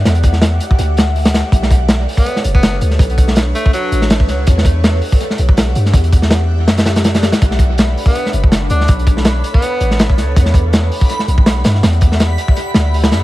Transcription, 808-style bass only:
X:1
M:4/4
L:1/8
Q:"Swing 16ths" 1/4=163
K:Edor
V:1 name="808-style bass" clef=bass
E,,3 z D,,3 z | B,,,3 z2 F,,,2 D,, | B,,,3 z2 A,,,2 C,, | E,,3 z2 B,,,2 G,, |
E,,4 F,,3 z | B,,,3 z2 F,,,2 D,, | B,,,3 z2 A,,,2 C,, | E,,3 z2 B,,,2 G,, |
E,,3 z2 D,,2 F,, |]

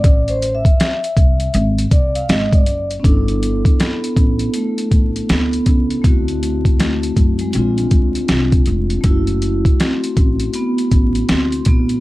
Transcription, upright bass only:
X:1
M:4/4
L:1/8
Q:"Swing 16ths" 1/4=80
K:G
V:1 name="Upright bass" clef=bass
A,,,2 z C,, _A,,, C,, A,,, _G,,, | G,,,2 z A,,, z A,,, D,, ^C,, | D,,3 F,, _B,,, D,, C,, =F,,, | F,,,2 z A,,, z A,,, D,, _B,,, |]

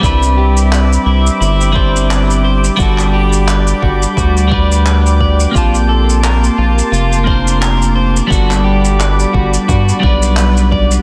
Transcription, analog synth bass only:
X:1
M:4/4
L:1/8
Q:"Swing 16ths" 1/4=87
K:G
V:1 name="Analog synth bass" clef=bass
C,,3 C,, G,,,4 | G,,,3 G,,, D,,4 | _B,,,3 B,,, =F,,,4 | G,,,3 G,,, G,, B,,,3 |]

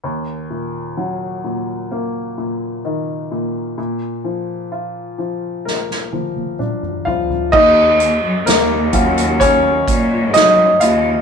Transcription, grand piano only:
X:1
M:4/4
L:1/8
Q:1/4=64
K:Ebm
V:1 name="Grand piano"
z8 | z6 z [Ff] | [Ee]2 [B,B]2 [Dd]2 [Ee] [Ff] |]
V:2 name="Grand piano" clef=bass
E,, B,, G, B,, B, B,, E, B,, | B,, F, F F, B F, =D F, | z3 [G,DF] z4 |]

